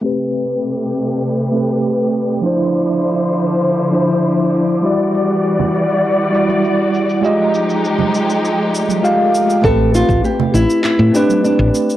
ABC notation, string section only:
X:1
M:4/4
L:1/8
Q:1/4=100
K:Am
V:1 name="String section"
[C,A,GB]8 | [D,F,Ec]8 | [E,G,^Fd]8 | [F,_A,_EG]8 |
z8 |]